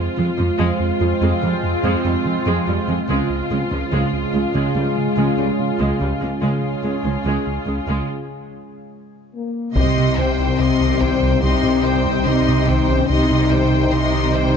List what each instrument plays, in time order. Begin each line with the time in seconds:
Already playing: ambient pad G#3 C4 F4 C5, viola section F4
0.17 cello section F2, analog synth bass F3, viola section G#3, synth pluck C4
0.38 cello section F2, analog synth bass F2, viola section F3, synth pluck F4
0.59 analog synth bass F2, cello section F2, synth pluck F3, viola section G#3
0.80 analog synth bass F2
1.01 analog synth bass F2, cello section F2, viola section G#3, synth pluck F4
1.21 analog synth bass F2, cello section F2, synth pluck F3, viola section G#3
1.42 cello section F2, analog synth bass F3, viola section G3, synth pluck C4
1.63 analog synth bass F2
1.83 analog synth bass F2, cello section F2, synth pluck F3, viola section G#3
2.05 analog synth bass F2, cello section F2, viola section G3, synth pluck F4
2.25 analog synth bass F3
2.46 analog synth bass F2, cello section F2, synth pluck F3, viola section G#3
2.67 analog synth bass F2, cello section F2, viola section G3, synth pluck F4
2.88 cello section F2, analog synth bass F3, viola section G#3, synth pluck C4
3.08 analog synth bass C#2, cello section C#2, synth pluck C#3, viola section G#3 F4, ambient pad G#3 C#4 F4 G#4
3.30 analog synth bass C#2
3.50 cello section C#2, analog synth bass C#3, synth pluck G#3, viola section G#3
3.71 analog synth bass C#2, cello section C#2, viola section F3, synth pluck C#4
3.92 analog synth bass C#2, cello section C#2, synth pluck C#3, viola section G#3
4.13 analog synth bass C#2
4.33 analog synth bass C#2, cello section C#2, viola section G#3, synth pluck C#4
4.55 analog synth bass C#2, cello section C#2, synth pluck C#3, viola section G#3
4.75 cello section C#2, analog synth bass C#3, viola section G3, synth pluck G#3
4.96 analog synth bass C#2
5.17 cello section C#2, analog synth bass C#2, synth pluck C#3, viola section G#3
5.38 analog synth bass C#2, cello section C#2, viola section G3, synth pluck C#4
5.59 analog synth bass C#3
5.79 cello section C#2, analog synth bass C#2, synth pluck C#3, viola section G#3
6.00 cello section C#2, analog synth bass C#2, viola section G3, synth pluck C#4
6.21 cello section C#2, analog synth bass C#3, viola section G#3, synth pluck G#3
6.42 analog synth bass C#2, cello section C#2, synth pluck C#3, viola section G#3 F4, ambient pad G#3 C#4 F4 G#4
6.63 analog synth bass C#2
6.84 cello section C#2, analog synth bass C#3, viola section G#3, synth pluck G#3
7.05 analog synth bass C#2, cello section C#2, viola section F3, synth pluck C#4
7.25 cello section C#2, analog synth bass C#2, synth pluck C#3, viola section G#3
7.46 analog synth bass C#2
7.67 cello section C#2, analog synth bass C#2, viola section G#3, synth pluck C#4
7.88 cello section C#2, analog synth bass C#2, synth pluck C#3, viola section G#3
9.35 french horn section A#3
9.75 detuned saw bass C2, analog synth bass C2, synth pluck C3, cello section C3, ambient pad G3 C4 D#4 C5, french horn section C4, viola section G4, violin section D#5 C6, taiko
9.97 analog synth bass C3, synth pluck G3
10.17 analog synth bass C2, synth pluck D#3, violin section C5 G5, viola section C5
10.39 analog synth bass C2, synth pluck D#3
10.59 analog synth bass C2, cello section C3, synth pluck C3, viola section G4, violin section D#5 C6
10.80 analog synth bass C2, synth pluck D#3
11.00 analog synth bass C2, synth pluck D#3, violin section C5 G5, viola section C5, taiko
11.22 analog synth bass C2, synth pluck C4
11.42 analog synth bass C2, cello section C3, synth pluck C3, french horn section C4, viola section G4, violin section D#5 C6
11.63 analog synth bass C3, synth pluck G3
11.83 analog synth bass C3, viola section C5, violin section C5 G5
12.06 analog synth bass C2
12.26 analog synth bass C2, cello section C3, synth pluck C3, french horn section D#4, viola section G4, violin section D#5 C6
12.47 analog synth bass C3, synth pluck G3
12.67 analog synth bass C2, synth pluck D#3, violin section C5 G5, viola section C5
12.89 analog synth bass C2, synth pluck D#3, french horn section C#4
13.09 analog synth bass C2, detuned saw bass C2, cello section C3, synth pluck C3, ambient pad G3 D#4 C5, french horn section D#4, viola section G4, violin section D#5 C6
13.30 analog synth bass C3, synth pluck G3
13.51 analog synth bass C2, synth pluck D#3, violin section C5 G5, viola section C5
13.72 analog synth bass C2, synth pluck D#3
13.92 analog synth bass C2, cello section C3, synth pluck C3, viola section G4, violin section D#5 C6
14.13 analog synth bass C2, synth pluck D#3
14.34 analog synth bass C2, synth pluck D#3, violin section C5 G5, viola section C5